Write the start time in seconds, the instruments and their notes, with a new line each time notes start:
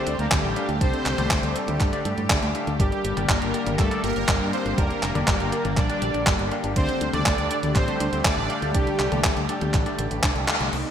Already playing: analog synth pad D3 G3 A3 G4, analog polysynth C4 C5, tine electric piano D4 G4 A4 D5
0.07 fingered electric bass D2, synth arpeggio sound D4, closed hi-hat
0.19 fingered electric bass D2, synth arpeggio sound A3, analog polysynth A#3 A#4, closed hi-hat
0.32 fingered electric bass D2, synth arpeggio sound D3, analog polysynth G3 G4, tine electric piano D4 G4 A4 D5, kick, clap, closed hi-hat
0.44 fingered electric bass A1, synth arpeggio sound D3
0.56 synth arpeggio sound D4, tine electric piano D4 G4 A4 F5, closed hi-hat
0.69 fingered electric bass D2, synth arpeggio sound A3, closed hi-hat
0.81 fingered electric bass C2, synth arpeggio sound D3, analog polysynth C4 C5, tine electric piano D4 G4 A4 D5, kick, closed hi-hat
0.94 synth arpeggio sound D3, closed hi-hat
1.06 fingered electric bass C2, synth arpeggio sound D4, clap, closed hi-hat
1.18 fingered electric bass C2, synth arpeggio sound A3, tine electric piano D4 G4 A4 D5, closed hi-hat, high tom
1.31 fingered electric bass D2, synth arpeggio sound D3, kick, clap, closed hi-hat
1.43 fingered electric bass D2, synth arpeggio sound D3, closed hi-hat
1.55 tine electric piano D4 G4 A4 D5, synth arpeggio sound D4, closed hi-hat
1.68 fingered electric bass D2, synth arpeggio sound A3, closed hi-hat, high tom
1.80 fingered electric bass G2, synth arpeggio sound D3, kick, clap, closed hi-hat
1.93 synth arpeggio sound D3, tine electric piano D4 G4 A4 D5, closed hi-hat
2.05 fingered electric bass G2, synth arpeggio sound A3, closed hi-hat
2.18 fingered electric bass G2, synth arpeggio sound A2, closed hi-hat
2.30 fingered electric bass D2, synth arpeggio sound D3, tine electric piano D4 G4 A4 D5, kick, clap, closed hi-hat
2.43 fingered electric bass D2, synth arpeggio sound A3, closed hi-hat
2.55 synth arpeggio sound D3, tine electric piano D4 G4 A4 F5, closed hi-hat
2.67 fingered electric bass D2, synth arpeggio sound D3, closed hi-hat
2.80 fingered electric bass G1, analog synth pad D3 G3 A#3, synth arpeggio sound G3, analog polysynth G3 G4, tine electric piano D4 G4 A#4 D5, kick, closed hi-hat
2.92 synth arpeggio sound G3, closed hi-hat
3.04 fingered electric bass G1, synth arpeggio sound G4, closed hi-hat
3.17 fingered electric bass G1, synth arpeggio sound D4, tine electric piano D4 G4 A#4 D5, closed hi-hat, high tom
3.29 fingered electric bass G1, synth arpeggio sound G3, analog polysynth A#3 A#4, kick, clap, closed hi-hat
3.41 fingered electric bass G1, synth arpeggio sound G3, closed hi-hat
3.54 tine electric piano D4 G4 A#4 D5, synth arpeggio sound G4, closed hi-hat
3.66 fingered electric bass G1, synth arpeggio sound D4, closed hi-hat, high tom
3.79 fingered electric bass G2, synth arpeggio sound G3, analog polysynth A3 A4, kick, clap, closed hi-hat
3.91 synth arpeggio sound G3, tine electric piano D4 G4 A#4 D5, closed hi-hat
4.04 fingered electric bass G1, analog polysynth A#3 A#4, synth arpeggio sound G4, closed hi-hat
4.16 fingered electric bass G1, synth arpeggio sound D4, closed hi-hat
4.28 fingered electric bass G1, synth arpeggio sound G3, tine electric piano D4 G4 A#4 D5, kick, clap, closed hi-hat
4.41 fingered electric bass G2, synth arpeggio sound G3
4.53 analog polysynth C4 C5, tine electric piano D4 G4 A#4 F5, synth arpeggio sound G4, closed hi-hat
4.65 fingered electric bass G1, synth arpeggio sound D4, closed hi-hat
4.78 fingered electric bass F1, synth arpeggio sound G3, analog polysynth A#3 A#4, tine electric piano D4 G4 A#4 D5, kick, closed hi-hat
4.90 synth arpeggio sound G3, closed hi-hat
5.03 fingered electric bass F1, synth arpeggio sound G4, clap, closed hi-hat
5.15 fingered electric bass F1, synth arpeggio sound D4, tine electric piano D4 G4 A#4 D5, closed hi-hat, high tom
5.28 fingered electric bass G1, synth arpeggio sound G3, analog polysynth A#3 A#4, kick, clap, closed hi-hat
5.40 fingered electric bass G1, synth arpeggio sound G3, closed hi-hat
5.52 tine electric piano D4 G4 A#4 D5, synth arpeggio sound G4, closed hi-hat
5.65 fingered electric bass G1, synth arpeggio sound D4, closed hi-hat, high tom
5.77 fingered electric bass A#1, synth arpeggio sound G3, analog polysynth D4 D5, kick, clap, closed hi-hat
5.90 synth arpeggio sound G3, tine electric piano D4 G4 A#4 D5, closed hi-hat
6.02 fingered electric bass A#1, synth arpeggio sound G4, closed hi-hat
6.14 fingered electric bass A#1, synth arpeggio sound D4, closed hi-hat
6.27 fingered electric bass G1, synth arpeggio sound G3, tine electric piano D4 G4 A#4 D5, kick, clap, closed hi-hat
6.39 fingered electric bass G1, synth arpeggio sound G3, closed hi-hat
6.51 tine electric piano D4 G4 A#4 F5, synth arpeggio sound G4, closed hi-hat
6.64 fingered electric bass G1, synth arpeggio sound D4, closed hi-hat
6.76 fingered electric bass D2, synth arpeggio sound D3, analog synth pad A3 G4, analog polysynth C4 C5, tine electric piano D4 G4 A4 D5, kick, closed hi-hat
6.89 synth arpeggio sound D3, closed hi-hat
7.01 fingered electric bass D2, synth arpeggio sound D4, closed hi-hat
7.13 fingered electric bass D2, synth arpeggio sound A3, tine electric piano D4 G4 A4 D5, analog polysynth D4 D5, closed hi-hat, high tom
7.25 fingered electric bass D2, synth arpeggio sound D3, analog polysynth D4 D5, kick, clap, closed hi-hat
7.38 fingered electric bass D2, synth arpeggio sound D3, closed hi-hat
7.51 tine electric piano D4 G4 A4 D5, synth arpeggio sound D4, closed hi-hat
7.63 fingered electric bass D2, synth arpeggio sound A3, closed hi-hat, high tom
7.75 fingered electric bass A1, synth arpeggio sound D3, analog polysynth C4 C5, kick, clap, closed hi-hat
7.88 synth arpeggio sound D3, tine electric piano D4 G4 A4 D5, closed hi-hat
8.00 fingered electric bass D2, synth arpeggio sound D4, closed hi-hat
8.12 fingered electric bass D2, synth arpeggio sound A3, analog polysynth C4 C5, closed hi-hat
8.24 fingered electric bass D2, synth arpeggio sound D3, tine electric piano D4 G4 A4 D5, analog polysynth D4 D5, kick, clap, closed hi-hat
8.37 fingered electric bass A1, synth arpeggio sound D3
8.50 synth arpeggio sound D4, tine electric piano D4 G4 A4 F5, closed hi-hat
8.62 fingered electric bass D2, synth arpeggio sound A3, closed hi-hat
8.74 fingered electric bass C2, synth arpeggio sound D3, analog polysynth G3 G4, tine electric piano D4 G4 A4 D5, kick, closed hi-hat
8.87 synth arpeggio sound D3, closed hi-hat
8.99 fingered electric bass C2, synth arpeggio sound D4, clap, closed hi-hat
9.12 fingered electric bass C2, synth arpeggio sound A3, tine electric piano D4 G4 A4 D5, closed hi-hat, high tom
9.24 fingered electric bass D2, synth arpeggio sound D3, kick, clap, closed hi-hat
9.37 fingered electric bass D2, synth arpeggio sound D3, closed hi-hat
9.49 tine electric piano D4 G4 A4 D5, synth arpeggio sound D4, closed hi-hat
9.61 fingered electric bass D2, synth arpeggio sound A3, closed hi-hat, high tom
9.74 fingered electric bass A1, synth arpeggio sound D3, kick, clap, closed hi-hat
9.86 synth arpeggio sound D3, tine electric piano D4 G4 A4 D5, closed hi-hat
9.99 fingered electric bass A1, synth arpeggio sound D3, closed hi-hat
10.11 fingered electric bass A1, synth arpeggio sound D3, closed hi-hat
10.23 fingered electric bass C2, tine electric piano D4 G4 A4 D5, synth arpeggio sound D4, kick, clap, closed hi-hat
10.36 fingered electric bass C2, synth arpeggio sound D3, closed hi-hat
10.48 synth arpeggio sound D2, tine electric piano D4 G4 A4 F5, clap, closed hi-hat
10.60 fingered electric bass C2, synth arpeggio sound D3, closed hi-hat
10.73 fingered electric bass C2, analog synth pad D#3 C4 G4 D5, synth arpeggio sound C4, analog polysynth D#4, crash
10.86 synth arpeggio sound C4